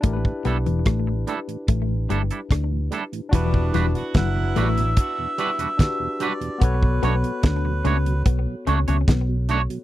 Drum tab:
HH |x-xxx-xxx-xxx-xx|x-xxx-xxx-xxx-xx|x-xxx-xxx-xxx-xx|
SD |----r-------r---|----o-------o---|----o-------o---|
BD |oo--o---o---o---|oo--o---o---o---|oo--o---o---o---|